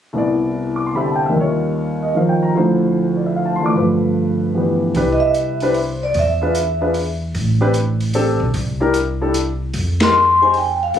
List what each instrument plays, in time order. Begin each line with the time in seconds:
0.13 grand piano C2 C3 B3
0.17 grand piano E4 D5
0.76 grand piano D6
0.86 grand piano C6
0.94 grand piano D3 C4 G4 E5 B5
1.06 grand piano A5
1.15 grand piano G5
1.26 grand piano D#2 E5
1.32 grand piano D#3 G3
1.37 grand piano F4 C#5
2.03 grand piano D#5
2.15 grand piano D#3 F3 D#4 C5 F5
2.29 grand piano G5
2.43 grand piano A#5
2.55 grand piano D2 D3 F3 E4 C5
3.17 grand piano D5
3.26 grand piano E5
3.36 grand piano F5
3.45 grand piano A5
3.56 grand piano C6
3.60 grand piano E3 A3 F4 D5
3.66 grand piano D6
3.75 grand piano G2 D3 F3 A3 B4
4.54 grand piano E3 B3 G4 B4
4.95 upright bass C2, grand piano D4 E4 G4 B4, kick, open hi-hat
5.13 vibraphone D#5
5.20 vibraphone E5
5.34 closed hi-hat
5.60 grand piano D4 E4 G4 B4, vibraphone C5, open hi-hat
5.74 open hi-hat
6.03 vibraphone D5
6.14 upright bass E2, kick, open hi-hat
6.19 vibraphone E5
6.41 grand piano D4 F4 G#4 B4
6.55 closed hi-hat
6.81 grand piano D4 F4 G#4 B4
6.94 open hi-hat
7.35 upright bass A1, kick, open hi-hat
7.61 grand piano C4 D4 G4 B4
7.74 closed hi-hat
8.00 open hi-hat
8.14 grand piano C4 D4 G4 A4, open hi-hat
8.40 upright bass B1
8.54 upright bass C2, kick, open hi-hat
8.80 grand piano D4 E4 G4 A#4
8.94 closed hi-hat
9.21 grand piano D4 E4 G4 A4
9.34 closed hi-hat
9.74 upright bass F2, kick, open hi-hat
10.00 grand piano D#4 G4 G#4 A#4, vibraphone C6, snare, ride
10.42 grand piano D#4 G4 G#4 C5, vibraphone G#5
10.54 vibraphone G5, open hi-hat
10.83 vibraphone F5
10.94 upright bass G2, grand piano D4 F4, kick, open hi-hat